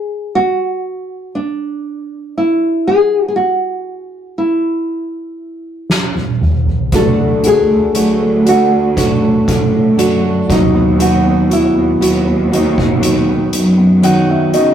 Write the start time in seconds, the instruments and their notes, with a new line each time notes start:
Already playing: nylon-string guitar G#4
0.35 nylon-string guitar F#4
1.35 nylon-string guitar D4
2.38 nylon-string guitar E4
2.87 nylon-string guitar G#4
3.28 nylon-string guitar G#4
3.36 nylon-string guitar F#4
4.38 nylon-string guitar E4
5.90 snare
6.15 high tom
6.41 mid tom
6.66 floor tom
6.92 cello section D2, steel-string acoustic guitar D3 F#3 A3 D4 F#4, grand piano D3, nylon-string guitar A4, kick, closed hi-hat
7.18 grand piano A3
7.44 grand piano D3, steel-string acoustic guitar A3 D4 F#4, nylon-string guitar G#4, closed hi-hat
7.69 cello section D2, grand piano A3
7.95 cello section D2, steel-string acoustic guitar D3 F#3 A3 D4 F#4, grand piano D3, closed hi-hat
8.22 grand piano A3
8.45 grand piano D3, steel-string acoustic guitar A3 D4 F#4, nylon-string guitar F#4, closed hi-hat
8.72 grand piano A3
8.96 grand piano D3, steel-string acoustic guitar F#3 A3 D4 F#4, kick, closed hi-hat
9.22 grand piano A3
9.47 cello section A2, grand piano D3, kick, closed hi-hat
9.52 nylon-string guitar D4
9.74 grand piano A3
9.97 cello section F#2, grand piano D3, steel-string acoustic guitar D3 F#3 A3 D4 F#4, closed hi-hat
10.24 grand piano A3
10.49 cello section D#2, grand piano F#3, steel-string acoustic guitar B3 D#4 F#4, nylon-string guitar D#4, kick, closed hi-hat
10.74 grand piano B3
10.99 grand piano B2, steel-string acoustic guitar D#3 F#3 B3 D#4 F#4, nylon-string guitar F#4, closed hi-hat
11.26 grand piano B3
11.49 steel-string acoustic guitar B3 F#4, nylon-string guitar E4, closed hi-hat
11.75 cello section D#2, grand piano B3
12.01 cello section D#2, steel-string acoustic guitar F#3 B3 F#4, closed hi-hat
12.27 grand piano B3
12.51 grand piano D#3, steel-string acoustic guitar B3 D#4 F#4, nylon-string guitar D#4, closed hi-hat
12.77 grand piano B3, kick
13.01 grand piano D#3, steel-string acoustic guitar F#3 B3 D#4 F#4, closed hi-hat
13.29 grand piano B3
13.53 cello section F#2, grand piano D#3, closed hi-hat
13.78 grand piano B3
14.03 steel-string acoustic guitar D#3 F#3 B3 D#4 F#4, grand piano D#3 F#5, closed hi-hat
14.30 grand piano B3 E5
14.53 cello section C#3, grand piano D#3 D#5, steel-string acoustic guitar B3 D#4 F#4, closed hi-hat